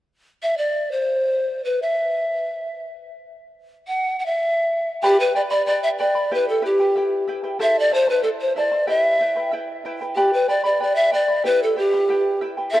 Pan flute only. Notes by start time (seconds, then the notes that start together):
0.43 E5
0.58 D5
0.92 C5
1.65 B4
1.82 E5
3.88 F#5
4.19 F#5
4.26 E5
5.03 G4
5.20 B4
5.36 D5
5.50 D5
5.66 D5
5.83 E5
5.99 D5
6.34 B4
6.49 A4
6.66 G4
7.62 E5
7.79 D5
7.94 C5
8.10 B4
8.23 A4
8.41 C5
8.57 D5
8.89 E5
10.16 G4
10.33 B4
10.49 D5
10.65 D5
10.83 D5
10.96 E5
11.13 D5
11.46 B4
11.63 A4
11.78 G4
12.72 E5